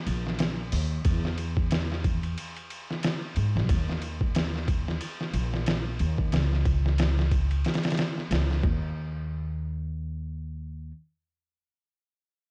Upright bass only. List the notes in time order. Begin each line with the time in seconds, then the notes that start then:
0.07 A#1
0.73 D#2
1.05 E2
3.37 G#2
3.55 B1
3.69 D#2
5.34 A#1
6.00 D#2
6.33 C#2
8.31 C#2
8.64 D#2